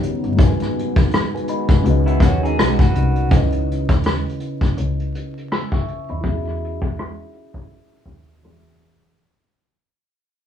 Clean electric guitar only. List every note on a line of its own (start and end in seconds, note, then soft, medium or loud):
2.06 2.21 B3 medium
2.06 2.20 E4 medium
2.21 2.42 C#4 medium
2.21 2.42 F#4 medium
2.43 2.78 D#4 medium
2.43 2.78 G#4 medium
2.79 3.28 F#4 medium
2.79 3.28 B4 medium